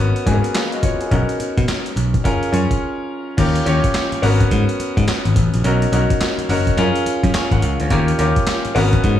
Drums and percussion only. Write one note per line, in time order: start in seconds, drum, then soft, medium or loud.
0.16 closed hi-hat soft
0.26 kick medium
0.26 closed hi-hat medium
0.44 closed hi-hat medium
0.55 snare loud
0.55 clap medium
0.55 closed hi-hat medium
0.72 closed hi-hat soft
0.83 kick loud
0.83 closed hi-hat medium
1.01 closed hi-hat medium
1.11 kick loud
1.11 closed hi-hat medium
1.29 closed hi-hat medium
1.40 closed hi-hat medium
1.58 kick medium
1.58 closed hi-hat medium
1.68 snare loud
1.68 clap medium
1.68 closed hi-hat medium
1.86 closed hi-hat medium
1.97 closed hi-hat medium
2.14 kick loud
2.14 closed hi-hat soft
2.25 kick medium
2.25 closed hi-hat medium
2.43 closed hi-hat soft
2.54 closed hi-hat medium
2.71 kick medium
2.71 closed hi-hat medium
3.38 kick loud
3.38 closed hi-hat medium
3.38 crash medium
3.56 closed hi-hat medium
3.66 closed hi-hat medium
3.84 kick medium
3.84 closed hi-hat medium
3.94 snare loud
3.94 clap medium
3.94 closed hi-hat medium
4.12 closed hi-hat medium
4.23 open hi-hat medium
4.40 kick medium
4.40 closed hi-hat medium
4.51 kick medium
4.51 closed hi-hat medium
4.69 closed hi-hat soft
4.80 closed hi-hat medium
4.97 kick medium
4.97 closed hi-hat medium
5.08 snare loud
5.08 clap medium
5.08 closed hi-hat medium
5.25 closed hi-hat soft
5.36 kick loud
5.36 closed hi-hat medium
5.54 closed hi-hat medium
5.64 closed hi-hat medium
5.82 closed hi-hat medium
5.93 closed hi-hat medium
6.10 kick medium
6.10 closed hi-hat medium
6.21 snare loud
6.21 clap medium
6.21 closed hi-hat medium
6.39 closed hi-hat medium
6.50 open hi-hat medium
6.67 kick medium
6.67 closed hi-hat soft
6.78 closed hi-hat medium
6.96 closed hi-hat medium
7.06 closed hi-hat medium
7.23 kick medium
7.23 closed hi-hat medium
7.34 snare loud
7.34 clap loud
7.34 closed hi-hat medium
7.51 kick loud
7.51 closed hi-hat soft
7.62 closed hi-hat medium
7.80 closed hi-hat medium
7.90 kick loud
7.90 closed hi-hat medium
8.08 closed hi-hat medium
8.19 closed hi-hat medium
8.36 kick medium
8.36 closed hi-hat medium
8.47 snare loud
8.47 clap medium
8.47 closed hi-hat medium
8.65 closed hi-hat medium
8.76 open hi-hat medium
8.93 kick loud
8.93 closed hi-hat soft
9.04 kick medium
9.04 closed hi-hat medium